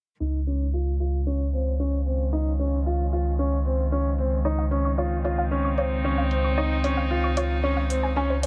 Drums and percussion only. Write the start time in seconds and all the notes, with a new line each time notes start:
1.00 closed hi-hat
1.53 closed hi-hat
2.06 closed hi-hat
2.59 closed hi-hat
3.12 closed hi-hat
3.65 closed hi-hat
4.18 closed hi-hat
4.72 closed hi-hat
5.25 closed hi-hat
5.78 closed hi-hat
6.31 closed hi-hat
6.84 closed hi-hat
7.37 closed hi-hat
7.90 closed hi-hat
8.43 closed hi-hat